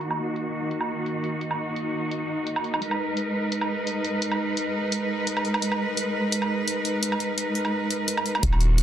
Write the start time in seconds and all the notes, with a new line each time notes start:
Already playing: D#3 A#3 F#4
0.01 D#4, closed hi-hat
0.11 low woodblock
0.36 closed hi-hat
0.71 closed hi-hat
0.81 low woodblock
1.06 closed hi-hat
1.24 closed hi-hat
1.41 closed hi-hat
1.51 low woodblock
1.76 closed hi-hat
2.11 closed hi-hat
2.47 closed hi-hat
2.56 low woodblock
2.64 closed hi-hat
2.74 low woodblock
2.82 G#3 A#4 B4, closed hi-hat
2.91 low woodblock
3.17 closed hi-hat
3.52 closed hi-hat
3.61 low woodblock
3.87 closed hi-hat
4.05 closed hi-hat
4.22 closed hi-hat
4.32 low woodblock
4.57 closed hi-hat
4.92 closed hi-hat
5.27 closed hi-hat
5.37 low woodblock
5.45 closed hi-hat
5.54 low woodblock
5.62 closed hi-hat
5.72 low woodblock
5.97 closed hi-hat
6.32 closed hi-hat
6.42 low woodblock
6.68 closed hi-hat
6.85 closed hi-hat
7.03 closed hi-hat
7.12 low woodblock
7.20 closed hi-hat
7.38 closed hi-hat
7.55 closed hi-hat
7.65 low woodblock
7.91 closed hi-hat
8.08 closed hi-hat
8.17 low woodblock
8.26 closed hi-hat
8.35 low woodblock
8.43 D#1 D#3 A#3 F4 F#4, kick, closed hi-hat
8.53 low woodblock
8.61 open hi-hat
8.78 closed hi-hat